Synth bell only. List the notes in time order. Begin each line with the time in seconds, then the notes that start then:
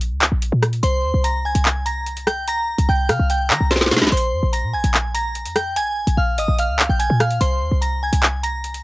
0.83 C5 C6
1.24 A#5 A#6
1.45 G#5 G#6
1.86 A#5 A#6
2.27 G5 G6
2.48 A#5 A#6
2.89 G5 G6
3.09 F5 F6
3.30 G5 G6
3.50 A#5 A#6
3.71 C5 C6
4.12 C5 C6
4.53 A#5 A#6
4.73 G#5 G#6
5.14 A#5 A#6
5.56 G5 G6
5.76 G#5 G#6
6.17 F5 F6
6.38 D#5 D#6
6.59 F5 F6
6.90 G5 G6
6.99 G#5 G#6
7.20 F5 F6
7.41 C5 C6
7.82 A#5 A#6
8.03 G#5 G#6
8.43 A#5 A#6